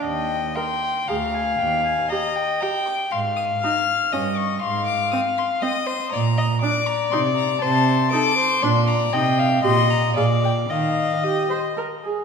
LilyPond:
<<
  \new Staff \with { instrumentName = "Violin" } { \time 3/4 \key ees \major \tempo 4 = 119 g''4 c'''4 bes''8 aes''8 | g''8 aes''8 bes''8 g''8 bes''8 d'''8 | c'''8 ees'''8 f'''4 ees'''8 des'''8 | c'''8 d'''8 ees'''8 c'''8 ees'''4 |
bes''4 d'''8 bes''8 c'''8 bes''8 | a''4 d'''4 c'''8 bes''8 | g''4 c'''8 bes''8 f''8 g''8 | f''4 ees''4 r4 | }
  \new Staff \with { instrumentName = "Violin" } { \time 3/4 \key ees \major ees''4 g''4 f''4~ | f''4 ees''4 g''4 | f''2 ees''4 | f''2 ees''8 c''8 |
d''8 ees''8 d''2 | c''4 a'8 c''8 d''4 | ees''8 f''8 ees''4 d''4 | ees''2~ ees''8 r8 | }
  \new Staff \with { instrumentName = "Viola" } { \time 3/4 \key ees \major r4 bes'4 aes'4 | r4 g'4 g'4 | r4 ees'4 des'4 | r4 c'4 c'4 |
r4 d'4 ees'4 | r4 ees'4 d'4 | ees'4 g'4 aes'4 | r4 g'8 c''8 bes'8 aes'8 | }
  \new Staff \with { instrumentName = "Cello" } { \clef bass \time 3/4 \key ees \major ees,4 r4 d,4 | ees,4 r2 | aes,4 r4 g,4 | aes,4 r2 |
bes,4 r4 c4 | c4 r4 bes,4 | c4 bes,4 bes,4 | ees4 r2 | }
>>